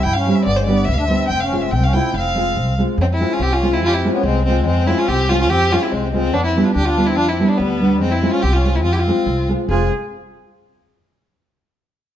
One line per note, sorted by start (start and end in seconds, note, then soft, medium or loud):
0.03 0.30 G2 loud
0.03 0.16 E4 medium
0.03 0.14 G5 loud
0.13 0.37 C#4 medium
0.13 0.36 F5 medium
0.26 0.44 G3 medium
0.26 0.44 C4 medium
0.26 0.45 E4 medium
0.26 0.45 G4 medium
0.35 0.48 C4 medium
0.35 0.44 E5 medium
0.45 0.90 G1 medium
0.45 0.57 B3 medium
0.45 0.58 D5 loud
0.56 0.68 G#3 medium
0.56 0.65 C5 medium
0.64 0.85 G3 medium
0.64 0.85 B3 medium
0.64 0.87 B3 medium
0.64 0.85 D4 medium
0.64 0.86 D5 loud
0.69 0.86 G4 medium
0.85 1.14 D2 loud
0.85 0.96 B3 medium
0.85 0.95 E5 loud
0.93 0.99 F5 medium
0.98 1.04 D4 medium
0.98 1.27 E5 loud
1.05 1.26 G3 soft
1.05 1.27 B3 medium
1.05 1.31 C4 medium
1.10 1.27 D4 medium
1.10 1.27 G4 medium
1.28 1.74 F1 medium
1.28 1.41 G5 loud
1.33 1.43 C4 loud
1.40 1.63 F5 medium
1.44 1.64 C#4 medium
1.52 1.69 G#3 medium
1.52 1.70 C4 medium
1.52 1.70 F4 medium
1.52 1.70 G#4 medium
1.61 1.72 E5 medium
1.66 1.74 C4 medium
1.71 1.98 C2 loud
1.71 1.85 G5 medium
1.75 1.85 C4 medium
1.83 1.95 C#4 medium
1.83 1.95 F5 medium
1.93 2.11 G#3 medium
1.93 2.11 C4 medium
1.93 2.15 E4 medium
1.93 2.11 F4 medium
1.93 2.12 G#4 medium
1.93 2.15 G5 loud
2.14 2.58 F1 loud
2.14 2.75 C4 medium
2.14 2.74 F5 loud
2.35 2.53 G#3 medium
2.35 2.53 C4 medium
2.35 2.54 F4 medium
2.35 2.54 G#4 medium
2.56 2.81 C2 loud
2.78 2.95 G#3 medium
2.78 2.96 C4 medium
2.78 2.96 F4 medium
2.78 2.96 G#4 medium
2.98 3.23 F2 loud
2.98 3.05 G#3 loud
2.98 3.06 C4 loud
3.11 3.30 C4 medium
3.11 3.35 E4 medium
3.20 3.37 G#3 medium
3.20 3.38 C4 medium
3.20 3.38 F4 medium
3.20 3.38 G#4 medium
3.32 3.41 C#4 medium
3.32 3.44 F4 medium
3.40 3.82 C2 medium
3.40 3.52 C4 medium
3.40 3.55 G4 loud
3.51 3.68 C#4 medium
3.51 3.72 F4 loud
3.62 3.79 G#3 medium
3.62 3.80 C4 medium
3.62 3.80 F4 medium
3.62 3.80 G#4 medium
3.69 3.79 C4 medium
3.69 3.73 C#4 medium
3.69 3.82 E4 medium
3.69 3.74 F4 medium
3.81 4.07 F2 loud
3.81 3.84 C4 loud
3.81 3.88 E4 medium
3.81 3.89 F4 loud
3.87 3.93 C#4 loud
3.87 3.95 F4 loud
3.87 3.90 G4 medium
3.93 4.14 C4 medium
3.93 4.13 E4 medium
4.04 4.21 G#3 medium
4.04 4.22 C4 medium
4.04 4.22 F4 medium
4.04 4.22 G#4 medium
4.13 4.23 B3 medium
4.13 4.26 C#4 medium
4.23 4.66 C2 loud
4.23 4.43 G#3 medium
4.23 4.44 C4 loud
4.44 4.60 G#3 medium
4.44 4.64 G#3 medium
4.44 4.65 C4 loud
4.44 4.64 C4 medium
4.48 4.64 F4 medium
4.48 4.65 G#4 medium
4.62 4.83 G#3 loud
4.66 4.92 F2 loud
4.66 4.89 C4 loud
4.84 5.04 G#3 medium
4.84 4.97 C4 medium
4.84 5.05 C4 medium
4.84 5.01 E4 loud
4.88 5.05 F4 medium
4.88 5.05 G#4 medium
4.96 5.07 C#4 medium
4.96 5.10 F4 loud
5.05 5.51 C2 loud
5.05 5.28 C4 medium
5.05 5.31 G4 loud
5.28 5.47 G#3 medium
5.28 5.48 C4 medium
5.28 5.36 C#4 medium
5.28 5.40 F4 loud
5.28 5.48 F4 medium
5.28 5.48 G#4 medium
5.38 5.48 C#4 medium
5.38 5.51 F4 loud
5.49 5.76 F2 loud
5.49 5.71 C4 loud
5.49 5.74 G4 loud
5.70 5.89 G#3 medium
5.70 5.89 C4 medium
5.70 5.82 C#4 medium
5.70 5.84 F4 loud
5.70 5.89 F4 medium
5.70 5.90 G#4 medium
5.81 5.91 C4 medium
5.81 5.93 E4 medium
5.90 6.34 C2 medium
5.90 6.09 G#3 medium
5.90 6.13 C4 medium
6.10 6.31 G#3 medium
6.10 6.31 C4 medium
6.15 6.35 C4 loud
6.15 6.31 F4 medium
6.15 6.32 G#4 medium
6.31 6.59 F2 loud
6.31 6.44 B3 medium
6.31 6.45 D4 loud
6.44 6.64 C4 medium
6.44 6.66 E4 medium
6.56 6.73 G3 medium
6.56 6.73 B3 medium
6.56 6.73 D4 medium
6.56 6.74 G4 medium
6.63 6.71 D4 medium
6.63 6.74 F4 medium
6.73 7.18 D2 medium
6.73 6.83 D4 medium
6.73 6.87 G4 loud
6.85 7.07 D4 medium
6.85 7.08 F4 loud
6.97 7.14 G3 medium
6.97 7.14 B3 soft
6.97 7.15 D4 medium
6.97 7.15 G4 medium
7.06 7.17 C4 medium
7.06 7.17 E4 medium
7.15 7.43 F2 loud
7.15 7.28 D4 loud
7.15 7.30 F4 loud
7.28 7.50 C4 medium
7.28 7.50 E4 medium
7.39 7.56 G3 medium
7.39 7.57 B3 medium
7.39 7.57 D4 medium
7.39 7.57 G4 medium
7.47 7.58 B3 medium
7.47 7.59 D4 medium
7.57 8.01 D2 loud
7.57 8.00 G3 medium
7.57 8.00 B3 medium
7.80 7.98 G3 medium
7.80 7.98 B3 medium
7.80 7.99 D4 medium
7.80 7.99 G4 medium
7.97 8.26 F2 loud
7.97 8.10 G#3 loud
7.97 8.13 C4 loud
8.09 8.32 C4 medium
8.09 8.33 E4 medium
8.22 8.40 G#3 medium
8.22 8.40 C4 medium
8.22 8.41 F4 medium
8.22 8.40 G#4 medium
8.31 8.42 C#4 medium
8.31 8.44 F4 medium
8.41 8.84 C2 medium
8.41 8.54 C4 medium
8.41 8.55 G4 loud
8.53 8.75 C#4 medium
8.53 8.77 F4 medium
8.64 8.82 G#3 medium
8.64 8.82 C4 soft
8.64 8.82 F4 medium
8.64 8.83 G#4 medium
8.74 8.83 C4 medium
8.74 8.83 E4 medium
8.84 9.09 F2 loud
8.84 8.92 C4 medium
8.84 8.94 F4 loud
8.93 9.00 E4 medium
8.93 9.01 G4 medium
8.99 9.49 C4 medium
8.99 9.48 F4 loud
9.07 9.24 G#3 medium
9.07 9.24 C4 medium
9.07 9.25 F4 medium
9.07 9.25 G#4 medium
9.26 9.52 C2 loud
9.48 9.66 G#3 medium
9.48 9.66 C4 medium
9.48 9.66 F4 soft
9.48 9.66 G#4 medium
9.69 9.88 F1 loud
9.69 9.90 G#3 medium
9.69 9.90 C4 medium
9.69 9.89 F4 medium
9.69 9.89 G#4 medium
9.69 9.90 G#4 loud